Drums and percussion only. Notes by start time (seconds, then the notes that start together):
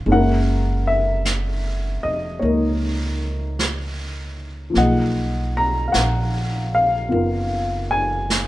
0.08 brush sweep
1.25 brush sweep, snare, hi-hat pedal
2.42 brush sweep
3.59 brush sweep, snare, hi-hat pedal
4.75 brush sweep, snare
5.94 brush sweep, snare, hi-hat pedal
7.12 brush sweep
8.30 brush sweep, snare, hi-hat pedal